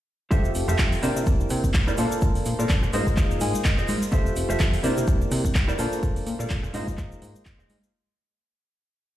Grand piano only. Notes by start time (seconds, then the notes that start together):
0.31 A3 F4 G4 C5 E5
1.02 A#3 D4 E4 G4 C5
1.97 A#3 D4 F4 C5 A5
2.92 A#3 D#4 F4 G#4 C5
4.12 A3 F4 G4 C5 E5
4.83 A#3 D4 E4 G4 C5
5.78 A#3 D4 F4 C5 A5
6.73 A#3 D#4 F4 G#4 C5